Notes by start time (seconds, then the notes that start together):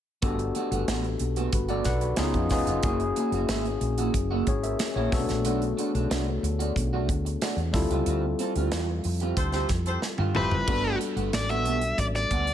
0.22 G1 A3 B3 D4 F#4 G4 A4, kick, closed hi-hat
0.39 closed hi-hat
0.55 A3 B3 F#4, closed hi-hat
0.71 G1 A3 B3 F#4, closed hi-hat
0.87 A1 A3 B3 F#4, snare, closed hi-hat
1.04 muted clean electric guitar stroke, closed hi-hat
1.19 B1, muted clean electric guitar stroke, closed hi-hat
1.36 A3 B3 F#4, closed hi-hat
1.53 G1 F#4 B4, muted clean electric guitar stroke, kick, closed hi-hat
1.68 A3 B3 F#4 A4 D5, closed hi-hat
1.84 B1 B4 F#5, muted clean electric guitar stroke, kick, snare, closed hi-hat
2.01 F#4 B4, muted clean electric guitar stroke, closed hi-hat
2.16 C#2 B3 C#4 D#4 F4 G#4, snare, closed hi-hat
2.34 F2, muted clean electric guitar stroke, kick, closed hi-hat
2.49 E1 B3 C#4 D#4 F4 G#4, muted clean electric guitar stroke, kick, snare, open hi-hat
2.67 F1 B3 D#4 F4, closed hi-hat
2.83 F#1 A#3 C#4 E4 F#4 G#4, kick, closed hi-hat
3.00 closed hi-hat
3.16 A#3 E4 G#4, closed hi-hat
3.32 F#1 A#3 E4 F#4, closed hi-hat
3.48 G#1 A#3 E4 F#4, snare, closed hi-hat
3.65 muted clean electric guitar stroke, closed hi-hat
3.81 A#1, muted clean electric guitar stroke, closed hi-hat
3.98 A#3 E4 F#4, closed hi-hat
4.14 F#1, muted clean electric guitar stroke, kick, closed hi-hat
4.31 A#3 E4 F#4
4.47 G#1 G#4 C#5, muted clean electric guitar stroke, kick, closed hi-hat
4.63 A#4 E5, muted clean electric guitar stroke, closed hi-hat
4.79 muted clean electric guitar stroke, snare, closed hi-hat
4.95 A#1 A#3 E4 F#4 G#4 C#5
5.12 B1 A3 B3 C4 F#4 A4, muted clean electric guitar stroke, kick, snare, open hi-hat
5.19 D4
5.29 A#1, muted clean electric guitar stroke, snare, closed hi-hat
5.45 B1 A3 D4 F#4, closed hi-hat
5.62 closed hi-hat
5.78 A3 D4 F#4, closed hi-hat
5.94 B1 A3 D4 F#4, closed hi-hat
6.10 C2 A3 D4 F#4, snare, closed hi-hat
6.27 muted clean electric guitar stroke
6.43 D2, muted clean electric guitar stroke, closed hi-hat
6.59 A3 D4 F#4, closed hi-hat
6.76 B1, muted clean electric guitar stroke, kick, closed hi-hat
6.93 A3 D4 F#4
7.09 D2, muted clean electric guitar stroke, kick, closed hi-hat
7.25 muted clean electric guitar stroke, closed hi-hat
7.42 A3 D4 F#4, snare, closed hi-hat
7.56 E2, muted clean electric guitar stroke, closed hi-hat
7.73 D2 G3 C4 E4 F4 A4, muted clean electric guitar stroke, kick, snare, open hi-hat
7.90 C#2 C4 F4 G4, closed hi-hat
8.06 D2 C4 F4 G4, closed hi-hat
8.39 C4 F4 A4, closed hi-hat
8.56 D2 C4 F4 G4, closed hi-hat
8.72 E2 C4 F4 G4, snare, closed hi-hat
8.88 muted clean electric guitar stroke
9.04 F2, muted clean electric guitar stroke, open hi-hat
9.20 C4 F4 G4, closed hi-hat
9.37 D2 G4 A4 C5, muted clean electric guitar stroke, kick, closed hi-hat
9.52 C4 F4 G4 A4 C5, snare, closed hi-hat
9.69 F2, muted clean electric guitar stroke, kick, snare, closed hi-hat
9.85 G4 A4 C5, muted clean electric guitar stroke, closed hi-hat
10.02 muted clean electric guitar stroke, snare
10.18 G2 C4 F4 G4, high tom
10.34 F1 G3 C4 E4 F4 G4 A4 B4 C5, muted clean electric guitar stroke, mid tom
10.51 F#1, muted clean electric guitar stroke, floor tom
10.67 G1 G3 A3 B3 D4 F#4 A4, kick, crash
11.01 muted clean electric guitar stroke, closed hi-hat
11.16 G1 A3 B3 F#4, closed hi-hat
11.33 A1 D5, muted clean electric guitar stroke, snare, closed hi-hat
11.49 A3 B3 F#4 E5, closed hi-hat
11.65 B1 A3 B3 G4, closed hi-hat
11.81 muted clean electric guitar stroke, closed hi-hat
11.98 A1 D5, muted clean electric guitar stroke, kick, closed hi-hat
12.15 D5, muted clean electric guitar stroke, snare, closed hi-hat
12.31 D2 A3 B3 F#4, kick, closed hi-hat
12.47 muted clean electric guitar stroke, closed hi-hat